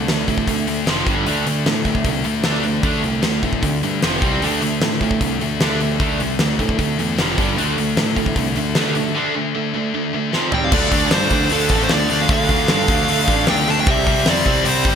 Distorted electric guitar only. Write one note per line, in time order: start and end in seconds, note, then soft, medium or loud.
0.09 0.26 D3 medium
0.09 0.26 A3 medium
0.28 0.46 D3 medium
0.28 0.46 A3 medium
0.48 0.66 D3 medium
0.48 0.66 A3 medium
0.67 0.85 D3 medium
0.67 0.85 A3 medium
0.86 1.05 F2 medium
0.86 1.06 C3 medium
0.86 1.06 F3 loud
1.06 1.25 G2 medium
1.06 1.25 D3 medium
1.06 1.26 G3 medium
1.26 1.45 D3 medium
1.26 1.45 A3 medium
1.26 1.46 D4 medium
1.47 1.65 D3 medium
1.47 1.65 A3 medium
1.66 1.84 D3 medium
1.66 1.84 A3 medium
1.86 2.04 D3 medium
1.86 2.04 A3 medium
2.05 2.23 D3 medium
2.05 2.24 A3 medium
2.25 2.43 D3 medium
2.25 2.43 A3 medium
2.45 2.63 D3 medium
2.45 2.64 A3 medium
2.45 2.64 D4 loud
2.64 2.82 D3 medium
2.64 2.83 A3 medium
2.84 3.02 D3 medium
2.84 3.02 A3 medium
2.84 3.03 D4 medium
3.03 3.21 D3 medium
3.03 3.22 A3 medium
3.22 3.41 D3 medium
3.22 3.41 A3 medium
3.43 3.61 D3 medium
3.43 3.61 A3 medium
3.62 3.81 D3 medium
3.62 3.81 A3 medium
3.83 4.01 D3 medium
3.83 4.01 A3 medium
4.03 4.22 F2 medium
4.03 4.22 C3 medium
4.03 4.22 F3 medium
4.23 4.42 C3 medium
4.23 4.42 G3 medium
4.23 4.42 C4 medium
4.42 4.61 D3 medium
4.42 4.62 A3 medium
4.42 4.62 D4 medium
4.63 4.80 D3 medium
4.63 4.80 A3 medium
4.83 5.00 D3 medium
4.83 5.00 A3 medium
5.03 5.20 D3 medium
5.03 5.20 A3 medium
5.22 5.40 D3 medium
5.22 5.40 A3 medium
5.42 5.59 D3 medium
5.42 5.60 A3 medium
5.61 5.79 D3 medium
5.61 5.80 A3 loud
5.61 5.80 D4 loud
5.80 5.98 D3 medium
5.80 5.99 A3 medium
6.00 6.18 D3 medium
6.00 6.19 A3 medium
6.00 6.19 D4 medium
6.20 6.38 D3 medium
6.20 6.38 A3 medium
6.40 6.58 D3 medium
6.40 6.58 A3 medium
6.59 6.77 D3 medium
6.59 6.77 A3 medium
6.79 6.97 D3 medium
6.79 6.97 A3 medium
6.98 7.16 D3 medium
6.98 7.17 A3 medium
7.17 7.36 F2 medium
7.17 7.37 C3 medium
7.17 7.38 F3 medium
7.37 7.56 G2 medium
7.37 7.56 D3 medium
7.37 7.57 G3 medium
7.57 7.76 D3 medium
7.57 7.77 A3 medium
7.57 7.77 D4 loud
7.78 7.96 D3 medium
7.78 7.96 A3 medium
7.97 8.15 D3 medium
7.97 8.15 A3 medium
8.16 8.35 D3 medium
8.16 8.35 A3 medium
8.36 8.54 D3 medium
8.36 8.55 A3 medium
8.56 8.74 D3 medium
8.56 8.75 A3 medium
8.75 8.94 D3 medium
8.75 8.95 A3 medium
8.75 8.95 D4 loud
8.95 9.13 D3 medium
8.95 9.14 A3 medium
9.14 9.33 D3 loud
9.14 9.34 A3 medium
9.14 9.34 D4 medium
9.35 9.53 D3 medium
9.35 9.53 A3 medium
9.55 9.73 D3 medium
9.55 9.73 A3 medium
9.74 9.92 D3 medium
9.74 9.92 A3 medium
9.94 10.12 D3 medium
9.94 10.12 A3 medium
10.13 10.31 D3 medium
10.13 10.31 A3 medium
10.33 10.52 F2 medium
10.33 10.50 C3 loud
10.33 10.52 F3 loud
10.51 10.71 C3 medium
10.51 10.71 G3 medium
10.51 10.72 C4 medium
10.72 10.90 D3 loud
10.72 10.91 A3 loud
10.72 10.92 D4 loud
10.91 11.12 D3 medium
10.91 11.12 A3 medium
10.91 11.13 D4 medium
11.12 11.32 D3 loud
11.12 11.32 A3 medium
11.12 11.33 D4 loud
11.32 11.50 D3 medium
11.32 11.50 A3 medium
11.32 11.51 D4 loud
11.51 11.69 D3 loud
11.51 11.70 A3 loud
11.51 11.71 D4 loud
11.70 11.89 D3 loud
11.70 11.90 A3 loud
11.70 11.90 D4 loud
11.90 12.08 D3 loud
11.90 12.09 A3 medium
11.90 12.10 D4 loud
12.10 12.28 D3 medium
12.10 12.29 A3 medium
12.10 12.29 D4 medium
12.29 12.48 D3 loud
12.29 12.49 A3 loud
12.29 12.50 D4 loud
12.50 12.68 D3 medium
12.50 12.69 A3 medium
12.50 12.70 D4 medium
12.69 12.87 D3 loud
12.69 12.88 A3 loud
12.69 12.89 D4 loud
12.89 13.07 D3 medium
12.89 13.08 A3 medium
12.89 13.09 D4 loud
13.08 13.28 D3 loud
13.08 13.28 A3 loud
13.08 13.29 D4 loud
13.29 13.47 D3 loud
13.29 13.48 A3 loud
13.29 13.49 D4 loud
13.48 13.66 D3 medium
13.48 13.67 A3 loud
13.48 13.67 D4 loud
13.67 13.86 D3 medium
13.67 13.86 A3 medium
13.67 13.86 D4 medium
13.87 14.06 C3 loud
13.87 14.07 G3 loud
13.87 14.08 C4 loud
14.07 14.26 C3 medium
14.07 14.27 G3 medium
14.07 14.28 C4 medium
14.26 14.46 C3 loud
14.26 14.47 G3 loud
14.26 14.47 C4 loud
14.46 14.64 C3 medium
14.46 14.66 G3 medium
14.46 14.66 C4 medium
14.66 14.84 C3 medium
14.66 14.84 G3 medium
14.66 14.85 C4 loud
14.85 14.95 C3 loud
14.85 14.95 G3 loud
14.85 14.95 C4 loud